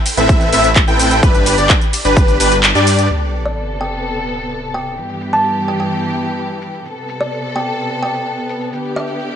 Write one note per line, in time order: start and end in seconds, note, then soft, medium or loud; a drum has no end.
0.06 open hi-hat loud
0.06 ride medium
0.06 shaker medium
0.17 0.50 A1 loud
0.17 0.50 C4 medium
0.17 0.50 E4 medium
0.17 0.50 A4 medium
0.17 0.50 B4 medium
0.17 0.50 E5 loud
0.17 0.50 E5 medium
0.17 closed hi-hat medium
0.17 shaker soft
0.29 kick loud
0.29 closed hi-hat medium
0.29 shaker soft
0.41 closed hi-hat soft
0.41 shaker soft
0.53 0.85 A1 loud
0.53 0.68 C4 loud
0.53 0.68 E4 medium
0.53 0.68 A4 medium
0.53 0.68 B4 medium
0.53 0.68 E5 loud
0.53 open hi-hat loud
0.53 ride medium
0.53 shaker medium
0.64 closed hi-hat medium
0.64 shaker soft
0.76 kick loud
0.76 clap loud
0.76 closed hi-hat medium
0.76 shaker soft
0.88 1.20 A1 loud
0.88 1.20 C4 medium
0.88 1.20 E4 medium
0.88 1.20 A4 medium
0.88 1.20 B4 medium
0.88 1.20 G5 medium
0.88 closed hi-hat soft
0.88 shaker soft
0.99 open hi-hat loud
0.99 ride medium
0.99 shaker medium
1.11 closed hi-hat medium
1.11 shaker soft
1.23 1.56 G1 loud
1.23 1.55 D4 medium
1.23 1.55 G4 medium
1.23 1.55 B4 loud
1.23 kick loud
1.23 closed hi-hat medium
1.23 shaker soft
1.35 closed hi-hat soft
1.35 shaker soft
1.46 open hi-hat loud
1.46 ride medium
1.46 shaker medium
1.58 1.72 G1 loud
1.58 1.74 D4 medium
1.58 1.74 G4 medium
1.58 1.74 D5 medium
1.58 closed hi-hat medium
1.58 shaker soft
1.70 kick loud
1.70 clap loud
1.70 closed hi-hat medium
1.70 shaker soft
1.81 closed hi-hat soft
1.81 shaker soft
1.93 open hi-hat loud
1.93 ride medium
1.93 shaker medium
2.05 2.38 G1 loud
2.05 2.37 D4 medium
2.05 2.37 G4 medium
2.05 2.37 B4 loud
2.05 2.37 B4 medium
2.05 closed hi-hat medium
2.05 shaker soft
2.17 kick loud
2.17 closed hi-hat medium
2.17 shaker soft
2.28 closed hi-hat soft
2.28 shaker soft
2.40 2.73 G1 loud
2.40 2.56 D4 loud
2.40 2.56 G4 medium
2.40 2.56 B4 loud
2.40 open hi-hat loud
2.40 ride medium
2.40 shaker medium
2.52 closed hi-hat medium
2.52 shaker soft
2.63 clap loud
2.63 closed hi-hat medium
2.63 shaker soft
2.75 3.08 G2 loud
2.75 3.08 D4 medium
2.75 3.08 G4 medium
2.75 3.08 D5 medium
2.75 3.08 D5 loud
2.75 closed hi-hat soft
2.75 shaker soft
2.87 open hi-hat loud
2.87 ride medium
2.87 shaker medium
2.99 closed hi-hat medium
2.99 shaker soft
3.10 4.96 C3 medium
3.10 4.96 B3 medium
3.10 4.96 A4 medium
3.10 crash medium
3.10 sub drop medium
3.34 closed hi-hat medium
3.34 shaker medium
3.46 3.64 D5 medium
3.57 closed hi-hat soft
3.57 shaker soft
3.81 3.99 G5 medium
3.81 closed hi-hat medium
3.81 shaker medium
3.92 closed hi-hat soft
4.04 closed hi-hat soft
4.04 shaker soft
4.16 closed hi-hat soft
4.28 closed hi-hat medium
4.28 shaker medium
4.39 closed hi-hat soft
4.39 shaker soft
4.51 closed hi-hat soft
4.51 shaker soft
4.63 closed hi-hat soft
4.63 shaker soft
4.74 4.93 G5 medium
4.74 closed hi-hat medium
4.74 shaker medium
4.86 closed hi-hat soft
4.86 shaker soft
4.98 6.84 G2 medium
4.98 6.84 E3 medium
4.98 6.84 B3 medium
4.98 6.84 G4 medium
4.98 closed hi-hat soft
4.98 shaker soft
5.10 closed hi-hat soft
5.10 shaker soft
5.21 closed hi-hat medium
5.21 shaker medium
5.33 5.51 A5 medium
5.33 closed hi-hat soft
5.33 shaker soft
5.45 closed hi-hat soft
5.45 shaker soft
5.56 closed hi-hat soft
5.56 shaker soft
5.68 5.76 G5 medium
5.68 closed hi-hat medium
5.68 shaker medium
5.80 5.87 G5 medium
5.80 closed hi-hat soft
5.80 shaker soft
5.92 closed hi-hat soft
5.92 shaker soft
6.04 shaker soft
6.15 closed hi-hat medium
6.15 shaker medium
6.27 closed hi-hat soft
6.27 shaker soft
6.38 closed hi-hat soft
6.38 shaker soft
6.50 closed hi-hat soft
6.50 shaker soft
6.62 closed hi-hat medium
6.62 shaker medium
6.74 closed hi-hat soft
6.74 shaker soft
6.85 8.71 C3 medium
6.85 9.36 B3 medium
6.85 8.71 A4 medium
6.85 closed hi-hat soft
6.85 shaker soft
6.97 closed hi-hat soft
6.97 shaker soft
7.09 closed hi-hat medium
7.09 shaker medium
7.21 7.39 D5 medium
7.21 closed hi-hat soft
7.21 shaker soft
7.32 closed hi-hat soft
7.32 shaker soft
7.44 closed hi-hat soft
7.44 shaker soft
7.56 7.74 G5 medium
7.56 closed hi-hat medium
7.56 shaker medium
7.67 closed hi-hat soft
7.67 shaker soft
7.79 closed hi-hat soft
7.79 shaker soft
7.91 closed hi-hat soft
7.91 shaker soft
8.03 8.21 G5 medium
8.03 closed hi-hat medium
8.03 shaker medium
8.14 closed hi-hat soft
8.14 shaker soft
8.26 closed hi-hat soft
8.26 shaker soft
8.38 closed hi-hat soft
8.38 shaker soft
8.49 closed hi-hat medium
8.49 shaker medium
8.61 closed hi-hat soft
8.61 shaker soft
8.73 9.36 D3 medium
8.73 9.36 G4 medium
8.73 closed hi-hat soft
8.73 shaker soft
8.85 closed hi-hat soft
8.85 shaker soft
8.96 9.15 E5 medium
8.96 closed hi-hat medium
8.96 shaker medium
9.08 closed hi-hat soft
9.08 shaker soft
9.20 closed hi-hat soft
9.20 shaker soft
9.31 closed hi-hat soft
9.31 shaker soft